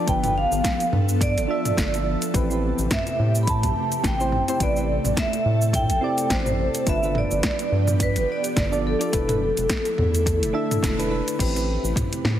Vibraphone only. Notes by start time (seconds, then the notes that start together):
0.09 G5
0.38 F5
1.22 D5
2.93 E5
3.43 B5
3.49 A5
4.07 G5
4.63 D5
5.19 E5
5.75 G5
6.33 C5
6.89 E5
7.18 D5
7.46 D5
8.03 B4
8.32 D5
8.59 D5
8.87 A4